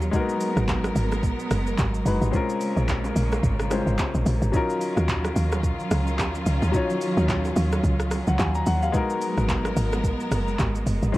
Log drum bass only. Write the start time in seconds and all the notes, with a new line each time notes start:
Already playing: D#2
0.57 G#1
0.96 G#1
1.51 F#1
1.79 G#1
2.06 F#1
2.21 G#1
2.77 A#1
3.16 A#1
3.43 G#1
3.87 G#1
4.14 A#1
4.26 A#1
4.42 G#1
4.97 D#2
5.36 D#2
5.91 C#2
6.19 D#2
6.46 C#2
6.62 D#2
7.17 D#2
7.56 D#2
7.83 C#2
8.27 C#2
8.39 D#2
8.66 D#2
9.38 G#1
9.77 G#1
10.31 F#1
10.59 G#1
10.87 F#1
11.03 G#1